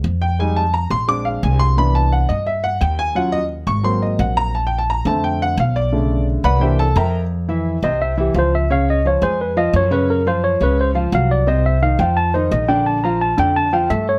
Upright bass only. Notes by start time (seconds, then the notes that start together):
0.04 F2
0.90 A#1
1.43 C2
2.30 G2
2.81 D#2
3.67 G#1
4.19 A#1
5.05 F2
5.58 B1
6.44 C2
6.96 F2
7.83 C2
8.34 C#2
9.22 F2
9.73 F#2
10.61 C#2
11.12 C2
11.99 F2
12.51 A#1
13.38 F2
13.90 G2